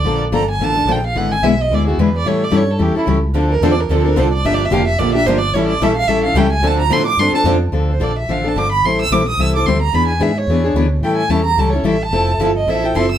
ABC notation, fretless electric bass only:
X:1
M:4/4
L:1/8
Q:"Swing" 1/4=219
K:Dm
V:1 name="Fretless electric bass" clef=bass
B,,,2 G,,,2 A,,,2 B,,,2 | ^G,,,2 =B,,,2 D,,2 E,,2 | A,,2 G,,2 E,, z ^C,,2 | D,,2 E,,2 D,,2 C,,2 |
G,,,2 F,,,2 B,,,2 G,,,2 | A,,,2 B,,,2 A,,,2 ^C,,2 | D,,2 A,,2 G,, z F,,2 | D,,2 B,,,2 A,,,2 G,,,2 |
A,,,2 B,,,2 C,,2 D,,2 | E,,2 ^G,,2 E,,2 D,,2 | A,,2 E,,2 ^C,,2 A,,,2 | F,,,2 G,,,2 A,,,2 ^F,,,2 |]